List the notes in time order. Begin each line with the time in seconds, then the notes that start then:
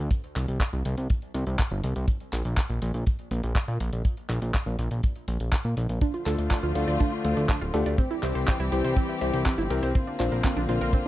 0.11 kick, closed hi-hat
0.24 closed hi-hat
0.36 C2, clap, closed hi-hat
0.48 C2, closed hi-hat
0.60 kick, clap, closed hi-hat
0.73 C2, closed hi-hat
0.85 C2, closed hi-hat
0.97 C2, closed hi-hat
1.10 kick, closed hi-hat
1.22 closed hi-hat
1.34 C2, closed hi-hat
1.47 C2, closed hi-hat
1.59 kick, clap, closed hi-hat
1.71 G1, closed hi-hat
1.84 C2, closed hi-hat
1.96 C2, closed hi-hat
2.08 kick, closed hi-hat
2.20 closed hi-hat
2.33 A#1, clap, closed hi-hat
2.45 A#1, closed hi-hat
2.57 kick, clap, closed hi-hat
2.70 A#1, closed hi-hat
2.82 A#1, closed hi-hat
2.94 A#1, closed hi-hat
3.07 kick, closed hi-hat
3.19 closed hi-hat
3.31 A#1, closed hi-hat
3.43 A#1, closed hi-hat
3.55 kick, clap, closed hi-hat
3.68 A#2, closed hi-hat
3.80 A#1, closed hi-hat
3.93 A#1, closed hi-hat
4.05 kick, closed hi-hat
4.17 closed hi-hat
4.29 A#1, clap, closed hi-hat
4.42 A#1, closed hi-hat
4.54 kick, clap, closed hi-hat
4.66 A#1, closed hi-hat
4.79 A#1, closed hi-hat
4.91 A#1, closed hi-hat
5.03 kick, closed hi-hat
5.16 closed hi-hat
5.28 A#1, closed hi-hat
5.40 A#1, closed hi-hat
5.52 kick, clap, closed hi-hat
5.65 A#2, closed hi-hat
5.77 A#1, closed hi-hat
5.89 A#1, closed hi-hat
6.01 D3 F3 A3 D4 F4, kick, closed hi-hat
6.14 F4, closed hi-hat
6.26 D2 A3 D4 F4 A4, clap, closed hi-hat
6.38 D2 D5, closed hi-hat
6.51 D4, kick, clap, closed hi-hat
6.63 D2 F4, closed hi-hat
6.75 D2 A3 D4 F4 A4, closed hi-hat
6.88 D2 D5, closed hi-hat
7.00 D4, kick, closed hi-hat
7.12 F4, closed hi-hat
7.24 D2 A3 D4 F4 A4, closed hi-hat
7.37 D2 D5, closed hi-hat
7.49 D4, kick, clap, closed hi-hat
7.61 D1 F4, closed hi-hat
7.74 D2 A3 D4 F4 G4 A4, closed hi-hat
7.86 D2 D5, closed hi-hat
7.98 E3 G3 C4 G4, kick, closed hi-hat
8.11 E4, closed hi-hat
8.23 C2 C4 E4 G4 C5, clap, closed hi-hat
8.35 C2 C5, closed hi-hat
8.47 C4, kick, clap, closed hi-hat
8.60 C2 E4, closed hi-hat
8.72 C2 C4 E4 G4 C5, closed hi-hat
8.84 C2 C5, closed hi-hat
8.97 C4, kick, closed hi-hat
9.09 E4, closed hi-hat
9.21 C2 C4 E4 G4 C5, closed hi-hat
9.34 C2 C5, closed hi-hat
9.46 C4, kick, clap, closed hi-hat
9.58 G1 E4, closed hi-hat
9.70 C2 C4 E4 G4 A#4, closed hi-hat
9.83 C2 C5, closed hi-hat
9.95 D3 A#3 C4 F4, kick, closed hi-hat
10.07 D4, closed hi-hat
10.19 A#1 D4 F4 A#4 C5, clap, closed hi-hat
10.32 A#1 A#4, closed hi-hat
10.44 C4, kick, clap, closed hi-hat
10.56 A#1 D4, closed hi-hat
10.69 A#1 D4 F4 A#4 C5, closed hi-hat
10.81 A#1 A#4, closed hi-hat
10.93 C4, kick, closed hi-hat